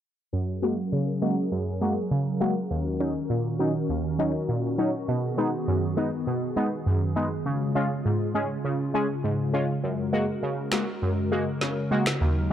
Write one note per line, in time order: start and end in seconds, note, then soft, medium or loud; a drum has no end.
0.33 0.78 F#2 medium
0.33 2.68 F#3 medium
0.33 2.68 C#4 medium
0.33 2.68 G#4 medium
0.33 5.04 A#4 medium
0.62 0.75 G#3 medium
0.62 0.75 A#3 medium
0.62 0.75 F#4 medium
0.92 1.37 C#3 medium
1.22 1.34 G#3 medium
1.22 1.35 A#3 medium
1.22 1.35 F#4 medium
1.52 1.97 F#2 medium
1.81 1.94 G#3 medium
1.81 1.94 A#3 medium
1.81 1.94 F#4 medium
2.11 2.56 C#3 medium
2.40 2.53 G#3 medium
2.40 2.53 A#3 medium
2.40 2.54 F#4 medium
2.71 3.15 D#2 medium
2.71 7.42 D#3 medium
2.71 5.06 C#4 medium
2.71 7.42 F#4 medium
3.00 3.13 F#3 medium
3.00 3.13 C#4 medium
3.00 3.13 D#4 medium
3.30 3.75 A#2 medium
3.59 3.72 F#3 medium
3.59 3.72 C#4 medium
3.59 3.72 D#4 medium
3.89 4.34 D#2 medium
4.19 4.31 F#3 medium
4.19 4.32 C#4 medium
4.19 4.32 D#4 medium
4.49 4.94 A#2 medium
4.78 4.91 F#3 medium
4.78 4.91 C#4 medium
4.78 4.91 D#4 medium
5.08 5.53 B2 medium
5.08 7.43 B3 medium
5.08 9.79 G#4 medium
5.38 5.50 G#3 medium
5.38 5.50 B3 medium
5.38 5.51 D#4 medium
5.68 6.12 F#2 medium
5.97 6.10 G#3 medium
5.97 6.10 B3 medium
5.97 6.10 D#4 medium
6.27 6.72 B2 medium
6.56 6.69 G#3 medium
6.56 6.69 B3 medium
6.56 6.69 D#4 medium
6.86 7.31 F#2 medium
7.16 7.28 G#3 medium
7.16 7.29 B3 medium
7.16 7.29 D#4 medium
7.46 7.91 C#3 medium
7.46 12.53 C#3 medium
7.46 12.17 G#3 medium
7.46 9.81 F4 medium
7.75 7.88 G#3 medium
7.75 7.88 C#4 medium
7.75 7.88 F4 loud
8.05 8.50 G#2 medium
8.34 8.47 G#3 medium
8.34 8.47 C#4 medium
8.34 8.48 G#4 medium
8.64 9.09 C#3 medium
8.94 9.07 G#3 medium
8.94 9.07 C#4 medium
8.94 9.07 G#4 loud
9.24 9.69 G#2 medium
9.53 9.66 G#3 medium
9.53 9.66 C#4 medium
9.53 9.66 F4 medium
9.83 10.28 F#2 medium
9.83 12.19 F#4 medium
9.83 12.53 A#4 loud
10.13 10.25 G#3 medium
10.13 10.26 A#3 medium
10.13 10.26 F#4 medium
10.43 10.88 C#3 medium
10.72 10.85 G#3 medium
10.72 10.85 A#3 medium
10.72 10.85 F#4 medium
10.72 finger snap medium
10.72 snare loud
11.02 11.47 F#2 medium
11.32 11.44 G#3 medium
11.32 11.44 A#3 medium
11.32 11.45 F#4 medium
11.61 12.06 C#3 medium
11.61 snare medium
11.91 12.04 G#3 medium
11.91 12.04 A#3 medium
11.91 12.04 F#4 medium
12.06 finger snap medium
12.06 snare loud
12.21 12.53 D#2 medium
12.21 12.53 F#3 medium
12.21 12.53 D#4 medium